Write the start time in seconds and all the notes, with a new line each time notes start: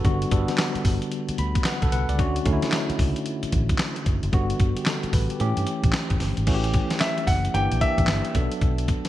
0.04 G1 D3 G3 B3 F#4, kick, closed hi-hat
0.22 closed hi-hat
0.31 G1 D3 G3 B3 A4, kick, closed hi-hat
0.48 snare, closed hi-hat
0.58 snare, clap, closed hi-hat
0.75 muted fingered electric bass stroke, closed hi-hat
0.85 G1, kick, open hi-hat
1.02 closed hi-hat
1.12 closed hi-hat
1.29 muted fingered electric bass stroke, closed hi-hat
1.38 D2 B5, closed hi-hat
1.55 kick, closed hi-hat
1.64 B4 F#5, snare, clap, closed hi-hat
1.82 B1 A4, kick, closed hi-hat
1.92 C2 B4 F#5, closed hi-hat
2.09 C#2 D5, closed hi-hat
2.18 D2 D3 A3 C#4 F#4, kick, closed hi-hat
2.36 closed hi-hat
2.45 D2 D3 A3 C#4 D#4, kick, closed hi-hat
2.53 E4
2.62 snare, closed hi-hat
2.72 snare, clap, closed hi-hat
2.90 muted fingered electric bass stroke, closed hi-hat
2.99 C#2, kick, open hi-hat
3.16 closed hi-hat
3.26 closed hi-hat
3.43 muted fingered electric bass stroke, closed hi-hat
3.52 A1, kick, closed hi-hat
3.69 kick, closed hi-hat
3.79 snare, clap, closed hi-hat
3.96 closed hi-hat
4.06 F#1, kick, closed hi-hat
4.23 F#1, closed hi-hat
4.32 G1 D3 G3 B3 F#4, kick, closed hi-hat
4.50 closed hi-hat
4.60 G1, kick, closed hi-hat
4.77 G4, closed hi-hat
4.86 A4, snare, clap, closed hi-hat
5.03 muted fingered electric bass stroke, closed hi-hat
5.13 A1 B4, kick, open hi-hat
5.30 G4, closed hi-hat
5.40 A2 E3 A3 C#4 G4, closed hi-hat
5.57 G2, closed hi-hat
5.67 closed hi-hat
5.84 A1, kick, closed hi-hat
5.93 snare, clap, closed hi-hat
6.10 F#1, kick, closed hi-hat
6.20 G1, snare, open hi-hat
6.37 G#1, closed hi-hat
6.47 A1 E3 A3 C#4 F#4, kick, closed hi-hat, crash
6.54 G4
6.64 closed hi-hat
6.74 kick, closed hi-hat
6.90 snare, closed hi-hat
7.00 E5, snare, clap, closed hi-hat
7.18 closed hi-hat
7.27 F#1 F#5, kick, open hi-hat
7.45 closed hi-hat
7.54 G1 E3 A#3 D4 G4 G5, closed hi-hat
7.71 A#1, closed hi-hat
7.81 E3 A#3 D4 G4 E5, kick, closed hi-hat
7.98 A1, kick, closed hi-hat
8.07 G1, snare, clap, closed hi-hat
8.25 closed hi-hat
8.35 B1 F#3 B3 D4 A4, kick, closed hi-hat
8.52 closed hi-hat
8.61 B1, kick, closed hi-hat
8.78 closed hi-hat
8.88 kick, closed hi-hat
9.05 snare, closed hi-hat